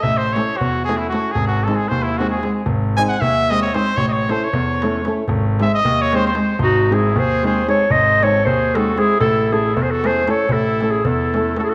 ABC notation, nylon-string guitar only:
X:1
M:5/8
L:1/8
Q:1/4=115
K:none
V:1 name="Nylon-string guitar"
z [A,^CEA] z [A,CEA] [A,CEA] | z [^G,^B,^D^G] z [G,B,DG] [G,B,DG] | z [^G,^B,^D^G] z [G,B,DG] [G,B,DG] | z [A,^CEA] z [A,CEA] [A,CEA] |
z [^G,^B,^D^G] z [G,B,DG] [G,B,DG] | z [^G,^B,^D^G] z [G,B,DG] [G,B,DG] | z [^G,^B,^D^G] z [G,B,DG] [G,B,DG] | z [A,^CEA] z [A,CEA] [A,CEA] |
z [A,^CEA] z [A,CEA] [A,CEA] |]